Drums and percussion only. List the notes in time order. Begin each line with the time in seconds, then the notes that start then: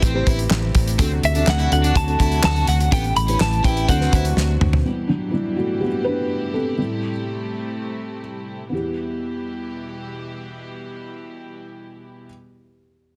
0.02 kick, closed hi-hat
0.27 kick, closed hi-hat
0.39 closed hi-hat
0.51 snare, clap
0.75 kick, closed hi-hat
0.87 closed hi-hat
0.99 kick, closed hi-hat
1.23 closed hi-hat
1.35 closed hi-hat
1.47 snare, clap
1.60 closed hi-hat
1.72 closed hi-hat
1.84 closed hi-hat
1.96 kick, closed hi-hat
2.08 closed hi-hat
2.20 kick, closed hi-hat
2.32 closed hi-hat
2.44 snare, clap
2.56 closed hi-hat
2.67 closed hi-hat
2.80 closed hi-hat
2.92 kick, closed hi-hat
3.04 closed hi-hat
3.16 closed hi-hat
3.28 closed hi-hat
3.41 snare, clap
3.53 closed hi-hat
3.64 kick, closed hi-hat
3.77 closed hi-hat
3.89 kick, closed hi-hat
4.01 snare
4.13 kick, closed hi-hat
4.25 closed hi-hat
4.37 snare
4.61 mid tom
4.73 floor tom